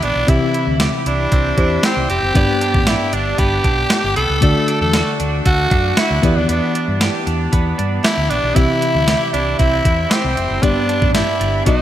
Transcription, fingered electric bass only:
0.03 0.13 A#1 medium
0.16 0.25 B1 medium
0.28 0.38 C2 medium
0.67 0.87 D2 medium
1.06 1.26 C2 medium
1.32 1.52 C2 medium
1.58 1.77 E2 medium
1.97 2.06 C2 medium
2.10 2.19 F1 medium
2.23 2.32 F#1 medium
2.35 2.45 G1 loud
2.75 2.94 A1 medium
3.13 3.32 G1 medium
3.39 3.58 G1 medium
3.65 3.84 B1 medium
4.04 4.13 G1 medium
4.17 4.26 C2 medium
4.30 4.39 C#2 medium
4.42 4.52 D2 loud
4.81 5.00 E2 medium
5.20 5.39 D2 medium
5.46 5.65 D2 medium
5.71 5.91 F#2 medium
6.11 6.20 D2 medium
6.23 6.33 E2 medium
6.36 6.46 D#2 medium
6.49 6.59 E2 loud
6.88 7.07 G2 medium
7.27 7.46 E2 medium
7.53 7.72 E2 medium
7.79 7.98 G2 medium
8.18 8.27 D2 medium
8.30 8.40 A#1 medium
8.43 8.53 B1 medium
8.56 8.66 C2 loud
8.95 9.14 D2 medium
9.34 9.53 C2 medium
9.60 9.79 C2 medium
9.85 10.05 E2 medium
10.24 10.34 C2 medium
10.38 10.47 F1 medium
10.51 10.60 F#1 medium
10.63 10.73 G1 loud
11.02 11.21 A1 medium
11.41 11.60 G1 medium
11.67 11.82 B1 loud

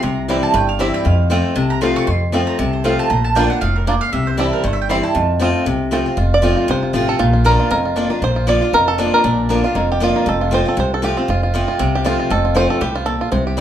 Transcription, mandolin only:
0.03 0.40 A#5 loud
0.43 0.54 A5 loud
0.54 0.68 G5 loud
0.69 0.80 F5 loud
0.80 0.94 E5 medium
0.94 1.05 G5 loud
1.05 1.43 F5 loud
1.56 1.70 A5 loud
1.70 1.81 A#5 loud
1.82 1.96 C6 loud
1.96 2.07 C#6 loud
2.07 2.45 C6 loud
2.47 2.58 A#5 loud
2.59 2.73 A5 loud
2.73 2.84 C5 medium
2.84 2.98 F5 medium
2.99 3.10 A5 loud
3.10 3.24 A#5 loud
3.24 3.35 A5 loud
3.36 3.49 G5 loud
3.50 3.61 F#5 loud
3.61 3.75 F5 loud
3.76 3.87 A#4 medium
3.87 4.01 D5 medium
4.01 4.12 F5 loud
4.12 4.26 E5 medium
4.27 4.38 C5 medium
4.39 4.52 A4 medium
4.53 4.64 A#4 medium
4.64 4.73 C5 medium
4.73 4.81 E5 loud
4.82 4.89 G5 medium
4.90 5.03 C6 loud
5.04 5.62 A5 loud

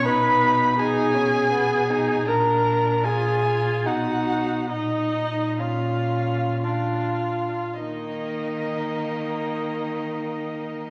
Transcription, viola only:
0.05 0.78 B4 medium
0.79 2.30 G#4 medium
2.28 3.06 A#4 medium
3.04 3.88 G#4 medium
3.87 4.72 F#4 medium
4.70 5.61 D#4 medium
5.60 6.63 F4 medium
6.63 7.77 F4 soft
7.81 10.90 D#4 medium

